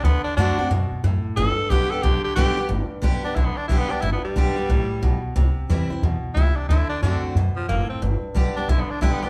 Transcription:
0.03 upright bass D2, steel-string acoustic guitar D3, tenor saxophone B3
0.24 tenor saxophone D4, muted upright bass stroke
0.37 upright bass F#2, steel-string acoustic guitar D3 A3 C4 F#4, tenor saxophone D4
0.58 steel-string acoustic guitar C4 F#4, muted upright bass stroke
0.70 upright bass F#2, steel-string acoustic guitar B2
0.91 muted upright bass stroke
1.03 upright bass F#2, steel-string acoustic guitar A2
1.25 muted upright bass stroke
1.37 upright bass G1, steel-string acoustic guitar G2, tenor saxophone A4
1.58 muted upright bass stroke
1.70 upright bass B1, steel-string acoustic guitar D3 G3 B3 G4, tenor saxophone G4
1.91 steel-string acoustic guitar B3 G4, tenor saxophone A4, muted upright bass stroke
2.03 upright bass B1, steel-string acoustic guitar D3, tenor saxophone G4
2.24 tenor saxophone G4, muted upright bass stroke
2.36 upright bass B1, steel-string acoustic guitar D3 G3 B3 G4, tenor saxophone G4
2.57 steel-string acoustic guitar B3 G4, muted upright bass stroke
2.69 upright bass G1, steel-string acoustic guitar G2
2.91 muted upright bass stroke
3.02 upright bass B1, steel-string acoustic guitar D3 G3 B3 G4
3.23 steel-string acoustic guitar B3 G4, tenor saxophone D4, muted upright bass stroke
3.35 upright bass B1, steel-string acoustic guitar D3, tenor saxophone E4
3.45 tenor saxophone B3
3.57 tenor saxophone D4, muted upright bass stroke
3.68 upright bass B1, steel-string acoustic guitar D3 G3 B3 G4, tenor saxophone E4
3.79 tenor saxophone B3
3.89 steel-string acoustic guitar B3 G4, tenor saxophone D4
4.02 upright bass G1, steel-string acoustic guitar G2, tenor saxophone E4
4.13 tenor saxophone B3
4.24 tenor saxophone G3, muted upright bass stroke
4.36 upright bass B1, steel-string acoustic guitar D3 G3 B3 G4
4.56 steel-string acoustic guitar B3 G4, muted upright bass stroke
4.69 upright bass B1, steel-string acoustic guitar A2
4.90 muted upright bass stroke
5.03 upright bass B1, steel-string acoustic guitar B2
5.23 muted upright bass stroke
5.36 upright bass C2, steel-string acoustic guitar C3
5.57 muted upright bass stroke
5.69 upright bass E2, steel-string acoustic guitar E3 G3 C4 E4
5.90 steel-string acoustic guitar C4 E4, muted upright bass stroke
6.02 upright bass E2, steel-string acoustic guitar B2
6.23 muted upright bass stroke
6.35 upright bass C#2, steel-string acoustic guitar C3, tenor saxophone E4
6.57 tenor saxophone D4
6.69 upright bass D2, steel-string acoustic guitar D3, tenor saxophone E4
6.89 tenor saxophone D4, muted upright bass stroke
7.02 upright bass F#2, steel-string acoustic guitar D3 A3 C4 F#4, tenor saxophone D4
7.23 muted upright bass stroke
7.35 upright bass F#2, steel-string acoustic guitar B2
7.56 tenor saxophone F3, muted upright bass stroke
7.69 upright bass F#1, steel-string acoustic guitar A2, tenor saxophone A#3
7.90 tenor saxophone C4, muted upright bass stroke
8.02 upright bass G1, steel-string acoustic guitar G2
8.23 muted upright bass stroke
8.34 upright bass B1, steel-string acoustic guitar D3 G3 B3 G4
8.56 steel-string acoustic guitar B3 G4, tenor saxophone D4, muted upright bass stroke
8.68 upright bass B1, steel-string acoustic guitar D3, tenor saxophone E4
8.80 tenor saxophone B3
8.89 tenor saxophone D4, muted upright bass stroke
9.01 upright bass B1, steel-string acoustic guitar D3 G3 B3 G4, tenor saxophone E4
9.13 tenor saxophone B3
9.22 steel-string acoustic guitar B3 G4, tenor saxophone D4, muted upright bass stroke

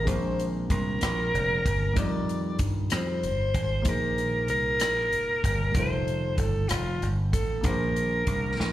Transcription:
0.03 slap bass A#1, grand piano A#2 G#3 C4, kick
0.07 grand piano D4 A#4, alto saxophone C5, closed hi-hat
0.39 closed hi-hat
0.70 slap bass C2, alto saxophone A#4, kick, closed hi-hat
1.01 slap bass A#1, cross-stick, closed hi-hat
1.34 slap bass F1, closed hi-hat
1.66 slap bass G1, kick, closed hi-hat
1.93 slap bass F2, grand piano G3 D#4, kick, closed hi-hat
1.98 grand piano F4 A#4, alto saxophone D5
2.29 closed hi-hat
2.59 slap bass G2, kick, closed hi-hat
2.90 slap bass F2, cross-stick, closed hi-hat
2.95 alto saxophone C5
3.23 slap bass G1, closed hi-hat
3.54 slap bass G#1, kick, closed hi-hat
3.82 slap bass A#1, grand piano A#2 A#3 D#4, kick, closed hi-hat
3.86 grand piano G#4 C5, alto saxophone A#4
4.18 closed hi-hat
4.48 slap bass C2, alto saxophone A#4, closed hi-hat
4.80 slap bass A#1, cross-stick, closed hi-hat
5.12 slap bass F1, closed hi-hat
5.44 slap bass G1, kick, closed hi-hat
5.72 slap bass F1, grand piano G3 D#4, kick, closed hi-hat
5.76 grand piano A3 F4 C5, alto saxophone C5
6.08 closed hi-hat
6.38 slap bass G1, alto saxophone A4, kick, closed hi-hat
6.68 slap bass F1, alto saxophone F4, cross-stick, closed hi-hat
7.02 slap bass G1, closed hi-hat
7.33 slap bass A1, alto saxophone A4, kick, closed hi-hat
7.61 slap bass A#1, grand piano A#2 A#3 D4, kick, closed hi-hat
7.65 grand piano G#4 C5, alto saxophone A#4
7.96 closed hi-hat
8.27 slap bass C2, kick, closed hi-hat
8.60 slap bass A#1, snare

